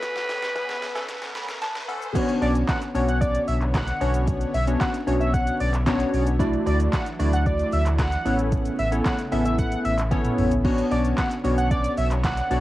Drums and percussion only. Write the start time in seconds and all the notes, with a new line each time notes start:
0.02 kick, snare, closed hi-hat, shaker
0.16 snare, shaker
0.29 snare, open hi-hat, shaker
0.42 snare, shaker
0.56 kick, snare, closed hi-hat, shaker
0.69 snare, shaker
0.82 snare, open hi-hat, shaker
0.96 snare, shaker
1.09 kick, snare, closed hi-hat, shaker
1.22 snare, shaker
1.35 snare, open hi-hat, shaker
1.49 snare, shaker
1.62 snare, closed hi-hat, shaker
1.75 snare, shaker
1.89 open hi-hat, shaker
2.02 shaker
2.15 kick, closed hi-hat, crash, shaker
2.29 closed hi-hat, shaker
2.42 open hi-hat, shaker
2.55 closed hi-hat, shaker
2.68 kick, snare, clap, closed hi-hat, shaker
2.82 closed hi-hat, shaker
2.95 open hi-hat, shaker
3.08 closed hi-hat, shaker
3.22 kick, closed hi-hat, shaker
3.35 closed hi-hat, shaker
3.48 open hi-hat, shaker
3.61 clap, closed hi-hat, shaker
3.74 kick, snare, clap, closed hi-hat, shaker
3.88 closed hi-hat, shaker
4.01 open hi-hat, shaker
4.14 closed hi-hat, shaker
4.28 kick, closed hi-hat, shaker
4.41 closed hi-hat, shaker
4.54 open hi-hat, shaker
4.67 closed hi-hat, shaker
4.81 kick, snare, clap, closed hi-hat, shaker
4.94 closed hi-hat, shaker
5.07 open hi-hat, shaker
5.21 closed hi-hat, shaker
5.34 kick, closed hi-hat, shaker
5.47 closed hi-hat, shaker
5.60 open hi-hat, shaker
5.74 clap, closed hi-hat, shaker
5.87 kick, snare, clap, closed hi-hat, shaker
6.00 closed hi-hat, shaker
6.14 open hi-hat, shaker
6.27 closed hi-hat, shaker
6.40 kick, closed hi-hat, shaker
6.54 closed hi-hat, shaker
6.67 open hi-hat, shaker
6.80 closed hi-hat, shaker
6.93 kick, snare, clap, closed hi-hat, shaker
7.06 closed hi-hat, shaker
7.20 open hi-hat, shaker
7.33 closed hi-hat, shaker
7.46 kick, closed hi-hat, shaker
7.59 closed hi-hat, shaker
7.73 open hi-hat, shaker
7.86 clap, closed hi-hat, shaker
7.99 kick, snare, clap, closed hi-hat, shaker
8.12 closed hi-hat, shaker
8.26 open hi-hat, shaker
8.39 closed hi-hat, shaker
8.52 kick, closed hi-hat, shaker
8.65 closed hi-hat, shaker
8.79 open hi-hat, shaker
8.92 closed hi-hat, shaker
9.05 kick, snare, clap, closed hi-hat, shaker
9.19 closed hi-hat, shaker
9.32 open hi-hat, shaker
9.45 closed hi-hat, shaker
9.59 kick, closed hi-hat, shaker
9.72 closed hi-hat, shaker
9.85 open hi-hat, shaker
9.98 clap, closed hi-hat, shaker
10.11 kick, closed hi-hat, high tom, shaker
10.25 closed hi-hat, mid tom, shaker
10.38 mid tom, open hi-hat, shaker
10.51 closed hi-hat, floor tom, shaker
10.65 kick, crash
10.78 closed hi-hat, shaker
10.91 open hi-hat, shaker
11.05 closed hi-hat, shaker
11.17 kick, snare, clap, closed hi-hat, shaker
11.31 closed hi-hat, shaker
11.45 open hi-hat, shaker
11.58 closed hi-hat, shaker
11.71 kick, closed hi-hat, shaker
11.84 closed hi-hat, shaker
11.97 open hi-hat, shaker
12.11 clap, closed hi-hat, shaker
12.24 kick, snare, clap, closed hi-hat, shaker
12.37 closed hi-hat, shaker
12.51 open hi-hat, shaker